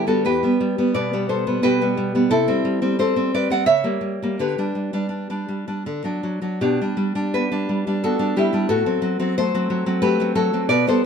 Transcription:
0.00 0.25 D3 medium
0.07 0.24 G3 soft
0.07 0.23 B3 medium
0.07 0.25 F#4 medium
0.07 0.25 A4 medium
0.25 0.43 E2 medium
0.25 0.92 G4 medium
0.25 0.93 B4 medium
0.43 0.59 G3 soft
0.43 0.77 B3 soft
0.60 0.77 G3 medium
0.78 1.12 G3 medium
0.78 1.12 B3 medium
0.94 1.61 B2 medium
0.94 1.27 B4 medium
0.94 1.27 D5 medium
1.13 1.28 G3 medium
1.13 1.46 B3 medium
1.29 1.45 G3 medium
1.29 1.61 A4 medium
1.29 1.61 C5 medium
1.47 1.80 G3 medium
1.47 1.81 B3 medium
1.63 2.30 B2 medium
1.63 2.28 G4 medium
1.63 2.29 B4 loud
1.81 1.96 G3 medium
1.81 2.14 B3 medium
1.97 2.14 G3 medium
2.15 2.30 G3 soft
2.15 2.30 B3 medium
2.31 2.47 C3 medium
2.31 2.95 E4 medium
2.31 2.96 A4 loud
2.48 2.64 G3 medium
2.48 2.81 C4 medium
2.65 2.81 G3 medium
2.82 3.16 G3 medium
2.82 2.98 C4 medium
2.99 3.15 C4 medium
2.99 3.31 A4 medium
2.99 3.32 C5 medium
3.16 3.33 G3 medium
3.16 3.50 C4 medium
3.34 3.49 G3 medium
3.34 3.50 B4 medium
3.34 3.51 D5 medium
3.50 3.66 G3 medium
3.50 3.66 C4 medium
3.50 3.67 D5 medium
3.50 3.66 F#5 medium
3.66 3.84 C#3 medium
3.66 4.35 C#5 medium
3.66 4.35 E5 loud
3.84 4.00 G3 medium
3.84 4.22 A#3 medium
4.01 4.21 G3 medium
4.22 4.38 G3 soft
4.22 4.38 A#3 soft
4.39 4.57 D3 medium
4.39 5.82 G4 medium
4.39 5.82 B4 medium
4.58 4.74 G3 soft
4.58 4.92 D4 medium
4.75 4.92 G3 soft
4.93 5.29 G3 soft
4.93 5.08 D4 medium
5.09 5.29 D4 soft
5.30 5.47 G3 soft
5.30 5.66 D4 soft
5.48 5.67 G3 soft
5.68 5.84 G3 soft
5.68 5.84 D4 soft
5.86 6.04 D3 medium
6.04 6.22 F#3 soft
6.04 6.41 D4 soft
6.23 6.40 F#3 soft
6.42 6.59 F#3 soft
6.42 6.59 D4 soft
6.61 6.79 B2 medium
6.61 6.80 D4 medium
6.61 7.30 G4 medium
6.81 6.96 G3 soft
6.81 7.14 D4 soft
6.97 7.14 G3 medium
7.15 7.51 G3 medium
7.15 7.50 D4 medium
7.34 8.02 B3 soft
7.34 7.98 G4 medium
7.34 7.99 B4 medium
7.52 7.68 G3 soft
7.52 7.86 D4 medium
7.69 7.86 G3 soft
7.87 8.18 G3 medium
7.87 8.18 D4 medium
8.04 8.70 B3 medium
8.04 8.34 F#4 medium
8.04 8.35 A4 medium
8.19 8.35 G3 medium
8.19 8.52 D4 medium
8.36 8.52 G3 medium
8.36 8.68 E4 medium
8.36 8.68 G4 medium
8.53 8.67 G3 medium
8.53 8.68 D4 medium
8.69 8.85 A2 medium
8.69 9.32 F#4 medium
8.69 9.33 A4 medium
8.86 9.01 F#3 soft
8.86 9.18 C4 medium
9.02 9.19 F#3 medium
9.20 9.53 F#3 medium
9.20 9.38 C4 medium
9.38 10.01 A3 medium
9.38 10.00 A4 medium
9.38 10.01 C5 loud
9.55 9.69 F#3 medium
9.55 9.85 C4 medium
9.70 9.85 F#3 medium
9.86 10.19 F#3 medium
9.86 10.20 C4 medium
10.02 10.69 A3 medium
10.02 10.34 G4 medium
10.02 10.34 B4 loud
10.20 10.34 F#3 medium
10.20 10.53 C4 medium
10.35 10.52 F#3 medium
10.35 10.67 F#4 medium
10.35 10.68 A4 medium
10.53 10.68 F#3 medium
10.53 10.68 C4 medium
10.69 10.86 B2 medium
10.69 10.86 B4 medium
10.69 10.86 D5 loud
10.87 11.03 G3 soft
10.87 11.05 B3 medium
10.87 11.03 A4 medium
10.87 11.04 C5 medium

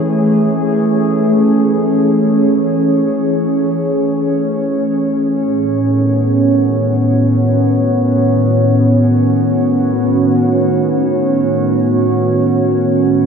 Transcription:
0.00 5.37 E3 medium
0.00 5.37 A3 medium
0.00 13.26 C#4 medium
0.00 6.96 G#4 medium
0.00 13.26 C#5 medium
5.40 13.26 A2 medium
5.52 13.26 D#3 medium
5.64 13.26 B3 medium
6.15 13.26 F#4 medium

